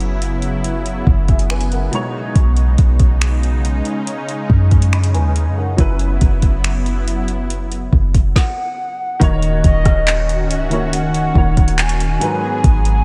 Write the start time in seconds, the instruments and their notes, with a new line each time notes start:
Already playing: 808-style bass F#1, analog synth pad C#3 F#3 B3 E4, grand piano F#3 C#4 E4 B4
0.00 closed hi-hat
0.22 closed hi-hat
0.42 closed hi-hat
0.64 closed hi-hat
0.86 closed hi-hat
1.07 808-style bass F#1, kick
1.28 grand piano G#4 E5, kick, closed hi-hat
1.39 closed hi-hat
1.50 grand piano B4 G#5, finger snap, closed hi-hat
1.61 closed hi-hat
1.71 grand piano A#4 F#5, closed hi-hat
1.91 grand piano B2 G#3 D#4 C#5, analog synth pad C#3 G#3 D#4, closed hi-hat
2.35 808-style bass B1, kick, closed hi-hat
2.57 closed hi-hat
2.78 808-style bass B1, kick, closed hi-hat
2.99 kick, closed hi-hat
3.21 finger snap, closed hi-hat
3.43 closed hi-hat
3.65 analog synth pad C#4, closed hi-hat
3.85 closed hi-hat
4.07 closed hi-hat
4.29 closed hi-hat
4.50 808-style bass F#2, kick
4.71 kick, closed hi-hat
4.82 closed hi-hat
4.93 grand piano D#5 B5, finger snap, closed hi-hat
5.04 closed hi-hat
5.14 808-style bass D#2, grand piano B4 G#5, closed hi-hat
5.36 closed hi-hat
5.46 808-style bass F#2
5.57 grand piano A#4 F#5
5.77 808-style bass F#1, grand piano F#3 C#4 E4 B4, analog synth pad F#3 B3 E4, kick, closed hi-hat
5.99 closed hi-hat
6.21 808-style bass F#1, kick, closed hi-hat
6.42 kick, closed hi-hat
6.64 finger snap, closed hi-hat
6.86 closed hi-hat
7.08 closed hi-hat
7.28 closed hi-hat
7.50 closed hi-hat
7.72 closed hi-hat
7.93 808-style bass F#1, kick
8.14 kick, closed hi-hat
8.36 soft synth lead F#5, kick, snare
9.20 808-style bass D#1, grand piano D#3 A#3 F#4 C#5, analog synth pad D#3 C#4 F#4, soft synth lead D#5, kick, closed hi-hat
9.42 closed hi-hat
9.64 808-style bass D#1, soft synth lead D#5, kick, closed hi-hat
9.85 kick, cross-stick, closed hi-hat
10.07 clap, closed hi-hat
10.29 closed hi-hat
10.50 808-style bass C#1, soft synth lead E5, closed hi-hat
10.70 grand piano D#3 A#3 F#4 C#5, closed hi-hat
10.93 soft synth lead F#5, closed hi-hat
11.14 closed hi-hat
11.34 808-style bass D#1, grand piano D#3 A#3 F#4 C#5, kick
11.57 kick, closed hi-hat
11.68 closed hi-hat
11.78 soft synth lead G#5, clap, closed hi-hat
11.89 closed hi-hat
12.00 closed hi-hat
12.20 grand piano G#2 F#3 A#4 B4, analog synth pad F#3 B3 G#4, closed hi-hat
12.64 808-style bass G#1, soft synth lead G#5, kick, closed hi-hat
12.85 closed hi-hat